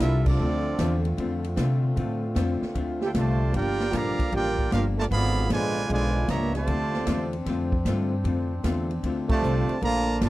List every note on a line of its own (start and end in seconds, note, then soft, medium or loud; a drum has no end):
0.00 0.38 C2 loud
0.00 5.06 D3 medium
0.00 0.27 G3 medium
0.00 0.38 G3 medium
0.00 0.37 A#3 medium
0.00 0.25 C4 medium
0.00 0.28 D4 medium
0.00 0.23 E4 medium
0.00 0.38 F4 medium
0.00 0.28 F4 medium
0.00 0.25 F4 medium
0.00 0.25 A4 medium
0.00 0.29 A#4 medium
0.00 0.25 E5 medium
0.00 kick soft
0.00 snare medium
0.00 hi-hat pedal medium
0.00 ride medium
0.25 1.00 F3 medium
0.25 1.00 A3 medium
0.25 1.02 C4 medium
0.25 1.00 D4 medium
0.25 1.02 F4 medium
0.25 1.02 A4 medium
0.25 1.02 D5 medium
0.25 kick loud
0.25 crash medium
0.39 0.77 D2 loud
0.39 0.67 D3 soft
0.39 0.67 A3 soft
0.39 3.51 A3 medium
0.39 3.51 C4 medium
0.39 0.68 C4 medium
0.39 5.07 F4 medium
0.39 0.69 F4 medium
0.78 1.17 E2 loud
0.78 1.06 D3 medium
0.78 1.07 A3 medium
0.78 1.07 C4 medium
0.78 1.07 F4 medium
0.78 kick soft
0.78 snare medium
0.78 hi-hat pedal medium
0.78 ride medium
1.05 ride medium
1.17 1.56 F2 medium
1.17 1.45 D3 medium
1.17 1.46 A3 medium
1.17 1.47 C4 medium
1.17 1.47 F4 medium
1.17 kick soft
1.17 ride medium
1.44 ride medium
1.56 1.95 C3 medium
1.56 1.84 D3 medium
1.56 1.85 A3 medium
1.56 1.85 C4 medium
1.56 1.85 F4 medium
1.56 kick soft
1.56 snare medium
1.56 hi-hat pedal medium
1.56 ride medium
1.96 2.35 A2 loud
1.96 2.24 D3 medium
1.96 2.24 A3 medium
1.96 2.25 C4 medium
1.96 2.25 F4 medium
1.96 kick soft
1.96 ride medium
2.35 2.60 F2 medium
2.35 2.63 D3 medium
2.35 2.63 A3 medium
2.35 2.64 C4 medium
2.35 2.64 F4 medium
2.35 kick soft
2.35 snare medium
2.35 hi-hat pedal medium
2.35 ride medium
2.62 muted upright bass stroke soft
2.62 snare medium
2.74 3.13 D2 medium
2.74 3.02 D3 medium
2.74 3.03 A3 medium
2.74 3.03 C4 medium
2.74 3.04 F4 medium
2.74 kick soft
2.74 ride medium
3.01 3.08 G4 medium
3.01 snare soft
3.06 3.10 E4 medium
3.06 3.11 A4 medium
3.06 3.11 C5 medium
3.06 3.11 G5 medium
3.14 3.52 C2 loud
3.14 3.52 C3 medium
3.14 3.41 D3 medium
3.14 3.52 F3 medium
3.14 3.42 A3 medium
3.14 3.52 A3 medium
3.14 3.42 C4 medium
3.14 3.43 F4 medium
3.14 kick soft
3.14 snare medium
3.14 hi-hat pedal medium
3.14 ride medium
3.18 3.53 F4 medium
3.18 3.53 C5 medium
3.18 3.53 D5 medium
3.18 3.53 A5 medium
3.53 3.92 G1 medium
3.53 3.81 G2 soft
3.53 3.81 F3 soft
3.53 5.10 G3 medium
3.53 5.10 A#3 medium
3.53 3.92 A#3 medium
3.53 3.82 A#3 medium
3.53 3.94 D4 medium
3.53 3.82 D4 medium
3.53 3.94 F4 medium
3.53 3.93 G4 medium
3.53 3.94 A#4 medium
3.53 3.94 D5 medium
3.53 kick soft
3.53 ride medium
3.57 3.95 G5 loud
3.80 snare medium
3.92 4.17 A#1 loud
3.92 4.20 G2 medium
3.92 4.32 D3 medium
3.92 4.20 F3 medium
3.92 4.32 F3 medium
3.92 4.32 A#3 medium
3.92 4.21 A#3 medium
3.92 4.21 D4 medium
3.92 kick soft
3.92 snare medium
3.92 hi-hat pedal medium
3.92 ride medium
3.97 4.34 G4 loud
3.97 4.34 D5 medium
3.97 4.34 F5 loud
3.97 4.34 A#5 loud
4.19 muted upright bass stroke soft
4.19 kick medium
4.19 ride medium
4.31 4.70 A1 medium
4.31 4.59 G2 soft
4.31 4.60 F3 medium
4.31 4.60 A#3 medium
4.31 4.69 A#3 medium
4.31 4.69 D4 medium
4.31 4.61 D4 medium
4.31 4.70 F4 medium
4.31 4.70 G4 medium
4.31 4.70 D5 medium
4.31 kick soft
4.31 ride medium
4.36 4.71 A#4 loud
4.36 4.71 G5 loud
4.58 kick medium
4.71 5.09 G1 loud
4.71 4.99 G2 medium
4.71 4.99 F3 medium
4.71 4.84 A#3 medium
4.71 5.00 A#3 medium
4.71 4.85 D4 medium
4.71 5.00 D4 medium
4.71 4.85 D4 medium
4.71 4.84 F4 medium
4.71 4.85 G4 medium
4.71 4.85 A#4 medium
4.71 4.85 F5 medium
4.71 snare medium
4.71 hi-hat pedal medium
4.71 ride medium
4.98 5.04 A3 medium
4.98 5.05 F4 medium
4.98 5.05 A#4 medium
4.98 5.05 D5 medium
4.98 5.05 A5 loud
4.98 snare medium
5.10 5.49 G#1 loud
5.10 5.38 G#2 soft
5.10 5.47 D3 medium
5.10 5.47 F3 loud
5.10 5.38 F3 soft
5.10 6.66 G#3 medium
5.10 6.66 B3 medium
5.10 5.47 B3 loud
5.10 5.39 B3 soft
5.10 10.29 D4 medium
5.10 5.39 D4 soft
5.10 6.66 F4 medium
5.10 5.48 G#4 loud
5.10 5.48 D5 loud
5.10 5.48 F5 loud
5.10 5.48 B5 loud
5.10 kick soft
5.10 ride medium
5.49 5.88 A#1 medium
5.49 5.77 G#2 medium
5.49 5.87 D3 medium
5.49 5.88 F3 loud
5.49 5.78 F3 medium
5.49 5.88 G#3 loud
5.49 5.78 B3 medium
5.49 5.78 D4 medium
5.49 kick soft
5.49 snare loud
5.49 hi-hat pedal medium
5.49 ride medium
5.53 5.91 F4 loud
5.53 5.90 B4 loud
5.53 5.90 D5 loud
5.53 5.91 G#5 loud
5.89 6.27 B1 medium
5.89 6.17 G#2 medium
5.89 6.25 D3 medium
5.89 6.26 F3 medium
5.89 6.17 F3 medium
5.89 6.26 G#3 medium
5.89 6.18 B3 medium
5.89 6.18 D4 medium
5.89 6.27 F4 medium
5.89 6.27 B4 medium
5.89 6.27 D5 loud
5.89 6.27 G#5 loud
5.89 kick soft
5.89 ride medium
6.28 6.67 C#2 loud
6.28 6.56 G#2 medium
6.28 6.56 F3 medium
6.28 6.55 A#3 medium
6.28 6.57 B3 medium
6.28 6.57 D4 medium
6.28 6.56 G4 medium
6.28 6.56 C#5 medium
6.28 6.55 E5 medium
6.28 6.56 A#5 loud
6.28 kick soft
6.28 snare medium
6.28 hi-hat pedal medium
6.28 ride medium
6.54 7.29 C3 medium
6.54 7.29 F3 medium
6.54 7.29 A3 medium
6.54 7.30 F4 medium
6.54 7.30 C5 medium
6.54 7.30 D5 loud
6.54 7.30 A5 loud
6.54 snare soft
6.54 ride medium
6.67 7.06 D2 loud
6.67 6.95 D3 soft
6.67 6.96 A3 soft
6.67 9.79 C4 medium
6.67 6.96 C4 soft
6.67 6.97 F4 medium
6.67 kick soft
6.67 ride medium
6.93 snare medium
7.06 7.45 E2 medium
7.06 7.34 D3 medium
7.06 7.34 A3 medium
7.06 7.35 C4 medium
7.06 7.35 F4 medium
7.06 kick soft
7.06 snare loud
7.06 hi-hat pedal medium
7.06 ride medium
7.33 ride medium
7.46 7.84 F2 loud
7.46 7.74 D3 medium
7.46 7.74 A3 medium
7.46 7.75 C4 medium
7.46 7.75 F4 medium
7.46 kick soft
7.46 snare soft
7.46 ride medium
7.72 kick medium
7.85 8.23 G2 loud
7.85 8.13 D3 medium
7.85 8.14 A3 medium
7.85 8.14 C4 medium
7.85 8.14 F4 medium
7.85 kick soft
7.85 snare medium
7.85 hi-hat pedal medium
7.85 ride medium
8.24 8.63 F2 loud
8.24 8.52 D3 soft
8.24 8.53 A3 medium
8.24 8.53 C4 medium
8.24 8.53 F4 medium
8.24 kick soft
8.24 ride medium
8.64 9.02 E2 loud
8.64 8.91 D3 medium
8.64 8.92 A3 medium
8.64 8.92 C4 medium
8.64 8.93 F4 medium
8.64 kick soft
8.64 snare medium
8.64 hi-hat pedal medium
8.64 ride medium
8.91 ride soft
9.03 9.41 D2 medium
9.03 9.31 D3 medium
9.03 9.31 A3 medium
9.03 9.32 C4 medium
9.03 9.32 F4 medium
9.03 kick soft
9.03 ride medium
9.29 9.78 C3 loud
9.29 9.78 F3 loud
9.29 9.78 A3 loud
9.29 9.79 F4 medium
9.29 9.79 C5 medium
9.29 9.79 D5 medium
9.29 9.79 A5 medium
9.29 kick loud
9.29 crash medium
9.42 9.67 C2 loud
9.42 9.70 D3 medium
9.42 9.70 A3 medium
9.42 9.71 C4 medium
9.42 9.71 F4 medium
9.42 hi-hat pedal medium
9.69 muted upright bass stroke soft
9.69 ride medium
9.81 10.20 A#1 medium
9.81 10.09 A#2 soft
9.81 10.19 D3 medium
9.81 10.19 F3 medium
9.81 10.10 A3 soft
9.81 10.29 A#3 medium
9.81 10.19 A#3 medium
9.81 10.10 D4 soft
9.81 10.11 F4 soft
9.81 10.20 D5 loud
9.81 10.20 A#5 loud
9.81 kick soft
9.81 ride medium
9.85 10.20 F4 loud
9.85 10.20 A5 loud
10.20 10.29 G1 loud
10.20 10.29 A#2 medium
10.20 10.29 D3 loud
10.20 10.29 F3 medium
10.20 10.29 A3 medium
10.20 10.29 A#3 loud
10.20 10.29 D4 medium
10.20 10.29 F4 medium
10.20 kick soft
10.20 snare loud
10.20 hi-hat pedal medium
10.20 ride medium
10.24 10.29 F4 loud
10.24 10.29 A#4 loud
10.24 10.29 D5 loud
10.24 10.29 A5 loud